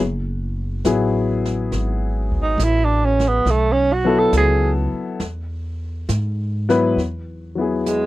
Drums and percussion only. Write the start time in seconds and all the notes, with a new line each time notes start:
0.85 snare, hi-hat pedal
1.45 snare
1.72 brush sweep, snare
2.32 kick
2.59 snare, hi-hat pedal
3.20 snare
3.46 brush sweep, snare
4.33 snare, hi-hat pedal
5.20 brush sweep, snare
6.09 snare, hi-hat pedal
6.70 snare
6.98 brush sweep, snare
7.86 snare, hi-hat pedal